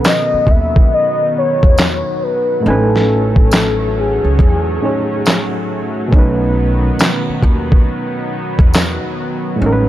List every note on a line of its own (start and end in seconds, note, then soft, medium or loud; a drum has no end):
0.00 2.59 B2 medium
0.00 2.61 D#3 medium
0.00 2.62 D#3 medium
0.00 9.89 F#3 medium
0.00 2.60 B3 medium
0.00 2.62 B3 medium
0.00 2.61 C#4 medium
0.00 2.64 A4 medium
0.04 0.52 D#5 loud
0.04 snare loud
0.04 clap medium
0.04 tambourine medium
0.33 muted upright bass stroke soft
0.47 0.85 D#2 medium
0.47 0.92 E5 loud
0.47 kick medium
0.76 kick loud
0.93 1.33 D#5 loud
1.38 2.25 C#5 loud
1.63 2.01 E2 medium
1.63 kick medium
1.78 snare loud
1.78 clap medium
1.78 tambourine medium
2.23 2.69 B4 loud
2.60 4.76 A2 medium
2.60 4.77 A3 medium
2.60 2.73 C4 soft
2.66 4.20 A1 loud
2.66 6.10 A3 medium
2.66 6.10 C#4 medium
2.66 4.79 D#4 medium
2.66 4.01 A4 loud
2.66 4.80 G#5 medium
2.70 4.81 C#4 medium
2.70 4.81 B4 medium
2.96 snare soft
3.36 kick medium
3.51 snare loud
3.51 clap medium
3.51 tambourine medium
4.00 5.71 G#4 loud
4.24 4.37 C#2 medium
4.39 4.77 E2 medium
4.39 kick medium
4.80 6.12 A2 soft
4.80 6.10 A3 soft
4.80 6.12 C#4 soft
4.80 6.13 D#4 soft
4.84 6.14 G#4 soft
4.84 6.14 C#5 medium
5.26 snare loud
5.26 clap medium
5.26 tambourine medium
6.08 9.54 B2 medium
6.08 9.55 A3 medium
6.13 6.89 B1 medium
6.13 9.57 D#3 medium
6.13 9.57 B3 medium
6.13 9.57 C#4 medium
6.13 9.58 D#4 medium
6.13 kick loud
6.19 9.59 B4 medium
6.99 snare loud
6.99 clap loud
6.99 tambourine medium
7.29 muted upright bass stroke soft
7.43 7.81 D#2 loud
7.43 kick medium
7.72 kick loud
8.59 8.97 E2 medium
8.59 kick loud
8.73 snare loud
8.73 clap medium
8.73 tambourine medium
9.56 9.89 A2 medium
9.56 9.89 G#3 medium
9.61 9.89 A1 loud
9.61 9.89 G#3 medium
9.61 9.89 C#4 medium
9.61 9.89 D#4 medium
9.66 9.72 A#4 medium
9.73 9.89 B4 medium